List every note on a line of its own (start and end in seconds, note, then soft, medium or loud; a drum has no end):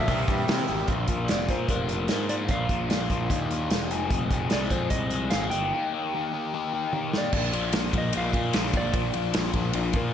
0.00 0.65 E5 medium
0.00 0.66 E6 medium
0.08 0.22 C2 medium
0.08 0.89 C3 medium
0.08 0.28 E3 medium
0.08 0.28 A#3 medium
0.08 0.27 C4 loud
0.08 0.26 G4 medium
0.08 kick loud
0.08 open hi-hat medium
0.08 shaker medium
0.27 0.42 G2 medium
0.27 0.47 E3 medium
0.27 0.68 G3 medium
0.27 0.47 A#3 medium
0.27 0.48 C4 medium
0.27 0.49 G4 medium
0.27 kick medium
0.27 shaker loud
0.39 shaker soft
0.48 0.62 C3 loud
0.48 0.87 E3 medium
0.48 0.69 A#3 medium
0.48 0.68 C4 medium
0.48 0.89 E4 medium
0.48 0.66 G4 medium
0.48 snare loud
0.48 open hi-hat medium
0.48 shaker medium
0.67 0.83 G#1 medium
0.67 0.89 G3 medium
0.67 0.86 A#3 medium
0.67 0.88 C4 medium
0.67 0.87 G4 medium
0.67 shaker loud
0.78 shaker soft
0.87 1.07 A#1 medium
0.87 1.08 A#3 medium
0.87 1.08 D4 medium
0.87 1.08 F4 medium
0.87 kick medium
0.87 closed hi-hat medium
1.08 1.27 A#1 medium
1.08 1.29 A#3 medium
1.08 1.29 D4 medium
1.08 1.30 F4 medium
1.08 kick medium
1.08 closed hi-hat medium
1.28 1.48 F1 medium
1.28 1.48 A#3 medium
1.28 1.48 D4 medium
1.28 1.50 F4 medium
1.28 1.49 D5 medium
1.28 snare loud
1.28 closed hi-hat medium
1.49 1.68 A#2 medium
1.49 1.68 A#3 medium
1.49 1.68 D4 medium
1.49 1.70 F4 medium
1.49 1.68 C5 medium
1.49 kick medium
1.49 snare soft
1.49 closed hi-hat medium
1.68 2.07 F1 medium
1.68 1.87 A#3 medium
1.68 1.88 D4 medium
1.68 1.90 F4 medium
1.68 2.26 A#4 medium
1.68 kick medium
1.68 closed hi-hat medium
1.89 2.09 A#3 medium
1.89 2.09 D4 medium
1.89 2.11 F4 medium
1.89 closed hi-hat medium
2.08 2.48 G#2 medium
2.08 2.28 A#3 medium
2.08 2.29 D4 medium
2.08 2.29 F4 medium
2.08 snare medium
2.08 closed hi-hat medium
2.29 2.49 A#3 medium
2.29 2.49 D4 medium
2.29 2.51 F4 medium
2.29 2.35 D5 medium
2.29 closed hi-hat medium
2.48 2.68 A#1 medium
2.48 2.69 A#3 medium
2.48 2.70 D4 medium
2.48 2.70 F4 medium
2.48 3.27 F5 medium
2.48 kick medium
2.48 closed hi-hat medium
2.69 2.88 A#1 medium
2.69 2.89 A#3 medium
2.69 2.89 D4 medium
2.69 2.90 F4 medium
2.69 kick medium
2.69 closed hi-hat medium
2.90 3.09 A#1 medium
2.90 3.08 A#3 medium
2.90 3.09 D4 medium
2.90 3.09 F4 medium
2.90 snare medium
2.90 closed hi-hat medium
3.09 3.29 A#1 medium
3.09 3.29 A#3 medium
3.09 3.29 D4 medium
3.09 3.29 F4 medium
3.09 kick medium
3.09 closed hi-hat soft
3.30 3.68 D#2 medium
3.30 3.49 A#3 medium
3.30 3.49 D4 medium
3.30 3.50 F4 medium
3.30 kick medium
3.30 closed hi-hat medium
3.50 3.70 A#3 medium
3.50 3.71 D4 medium
3.50 3.71 F4 medium
3.50 closed hi-hat soft
3.70 3.90 E1 medium
3.70 3.90 A#3 medium
3.70 3.90 D4 medium
3.70 3.90 F4 medium
3.70 snare loud
3.70 closed hi-hat medium
3.90 4.09 F1 medium
3.90 4.10 F3 medium
3.90 4.10 G#3 medium
3.90 4.11 C4 medium
3.90 4.11 G#4 loud
3.90 closed hi-hat medium
4.11 4.30 F1 medium
4.11 4.30 F3 medium
4.11 4.31 G#3 medium
4.11 4.31 C4 medium
4.11 4.31 G#4 medium
4.11 kick medium
4.11 closed hi-hat medium
4.30 4.50 F1 medium
4.30 4.51 F3 medium
4.30 4.51 G#3 medium
4.30 4.51 C4 medium
4.30 4.52 G#4 medium
4.30 kick medium
4.30 closed hi-hat medium
4.50 4.70 C2 medium
4.50 4.70 F3 medium
4.50 4.70 G#3 medium
4.50 4.71 C4 medium
4.50 4.71 G#4 medium
4.50 4.71 D5 medium
4.50 snare loud
4.50 closed hi-hat medium
4.70 4.90 F2 medium
4.70 4.90 F3 medium
4.70 4.90 G#3 medium
4.70 4.90 C4 medium
4.70 4.91 G#4 medium
4.70 4.92 C5 medium
4.70 kick medium
4.70 closed hi-hat medium
4.90 5.29 C2 medium
4.90 5.11 F3 medium
4.90 5.12 G#3 medium
4.90 5.12 C4 medium
4.90 5.12 G#4 medium
4.90 5.30 D#5 medium
4.90 kick medium
4.90 closed hi-hat medium
5.11 5.31 F3 medium
5.11 5.32 G#3 medium
5.11 5.32 C4 medium
5.11 5.32 G#4 medium
5.11 closed hi-hat medium
5.30 5.51 G#1 medium
5.30 5.51 F3 medium
5.30 5.51 G#3 medium
5.30 5.52 C4 medium
5.30 5.52 G#4 medium
5.30 5.50 F5 medium
5.30 snare medium
5.30 closed hi-hat medium
5.50 5.71 G1 medium
5.50 5.72 D#3 medium
5.50 5.72 A#3 medium
5.50 5.72 D#4 medium
5.50 5.73 G4 medium
5.50 6.88 G5 medium
5.50 closed hi-hat medium
5.73 5.92 D#3 medium
5.73 5.93 A#3 medium
5.73 5.93 D#4 medium
5.73 5.93 G4 medium
5.93 6.12 D#3 medium
5.93 6.13 A#3 medium
5.93 6.14 D#4 medium
5.93 6.14 G4 medium
6.14 6.32 D#3 medium
6.14 6.32 A#3 medium
6.14 6.32 D#4 medium
6.14 6.33 G4 medium
6.33 6.53 D#3 medium
6.33 6.53 A#3 medium
6.33 6.53 D#4 medium
6.33 6.54 G4 medium
6.54 6.72 D#3 medium
6.54 6.72 A#3 medium
6.54 6.73 D#4 medium
6.54 6.73 G4 medium
6.73 6.92 D#3 medium
6.73 6.93 A#3 medium
6.73 6.93 D#4 medium
6.73 6.93 G4 medium
6.93 7.12 D#3 medium
6.93 7.12 A#3 medium
6.93 7.12 D#4 medium
6.93 7.13 G4 medium
6.93 high tom soft
7.13 7.32 D#3 medium
7.13 7.31 A#3 medium
7.13 7.32 D#4 medium
7.13 7.32 G4 medium
7.13 snare medium
7.18 7.92 D5 medium
7.32 7.51 A#1 medium
7.32 7.52 F3 medium
7.32 7.53 A#3 medium
7.32 7.53 D4 medium
7.32 7.53 F4 medium
7.32 kick medium
7.32 crash medium
7.52 7.72 A#1 medium
7.52 7.73 F3 medium
7.52 7.74 A#3 medium
7.52 7.74 D4 medium
7.52 7.74 F4 medium
7.52 ride medium
7.73 7.92 A#1 medium
7.73 7.93 F3 medium
7.73 7.93 A#3 medium
7.73 7.94 D4 medium
7.73 7.94 F4 medium
7.73 snare loud
7.73 ride medium
7.93 8.11 A#1 medium
7.93 8.14 F3 medium
7.93 8.13 A#3 medium
7.93 8.13 D4 medium
7.93 8.15 F4 medium
7.93 kick medium
7.93 ride medium
7.98 8.16 D#5 medium
8.13 8.32 A#1 medium
8.13 8.35 F3 medium
8.13 8.34 A#3 medium
8.13 8.35 D4 medium
8.13 8.35 F4 medium
8.13 ride medium
8.17 8.53 F5 medium
8.33 8.52 A#2 medium
8.33 8.54 F3 medium
8.33 8.54 A#3 medium
8.33 8.54 D4 medium
8.33 8.56 F4 medium
8.33 kick medium
8.33 ride medium
8.53 8.72 A#1 medium
8.53 8.75 F3 medium
8.53 8.74 A#3 medium
8.53 8.75 D4 loud
8.53 8.76 F4 loud
8.53 snare loud
8.53 ride medium
8.73 8.92 A#1 medium
8.73 8.94 F3 medium
8.73 8.94 A#3 medium
8.73 8.94 D4 medium
8.73 8.95 F4 medium
8.73 10.00 D5 medium
8.73 kick medium
8.73 ride medium
8.94 9.12 A#1 medium
8.94 9.14 F3 medium
8.94 9.14 A#3 medium
8.94 9.14 D4 medium
8.94 9.15 F4 loud
8.94 kick loud
8.94 ride medium
9.14 9.32 A#1 medium
9.14 9.35 F3 medium
9.14 9.34 A#3 medium
9.14 9.35 D4 medium
9.14 9.36 F4 medium
9.14 ride medium
9.34 9.53 A#1 medium
9.34 9.54 F3 medium
9.34 9.54 A#3 medium
9.34 9.54 D4 medium
9.34 9.55 F4 loud
9.34 snare loud
9.34 ride medium
9.53 9.72 A#1 medium
9.53 9.72 F3 medium
9.53 9.72 A#3 medium
9.53 9.74 D4 medium
9.53 9.74 F4 medium
9.53 kick medium
9.53 ride medium
9.73 9.92 A#1 medium
9.73 9.93 F3 medium
9.73 9.93 A#3 medium
9.73 9.93 D4 medium
9.73 9.94 F4 medium
9.73 ride medium
9.93 10.12 A#2 medium
9.93 10.13 F3 medium
9.93 10.13 A#3 medium
9.93 10.13 D4 medium
9.93 10.13 F4 medium
9.93 10.13 A#4 medium
9.93 kick medium
9.93 ride medium